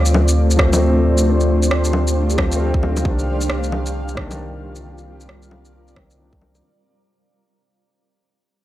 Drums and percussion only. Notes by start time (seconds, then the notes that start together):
0.06 shaker
0.14 low bongo
0.28 shaker
0.51 shaker
0.59 kick, cross-stick
0.73 low bongo, shaker
1.18 shaker
1.40 shaker
1.63 shaker
1.71 cross-stick
1.85 shaker
1.93 low bongo
2.08 shaker
2.30 shaker
2.38 kick, cross-stick, low bongo
2.52 shaker
2.74 kick
2.83 low bongo
2.97 low bongo, shaker
3.05 kick
3.19 shaker
3.41 shaker
3.50 cross-stick
3.64 shaker
3.72 low bongo
3.86 shaker
4.08 shaker
4.17 kick, cross-stick
4.31 low bongo, shaker
4.76 shaker
4.98 shaker
5.21 shaker
5.29 cross-stick
5.43 shaker
5.51 low bongo
5.65 shaker
5.88 shaker
5.96 kick, cross-stick, low bongo
6.11 shaker
6.33 kick
6.42 low bongo
6.55 low bongo, shaker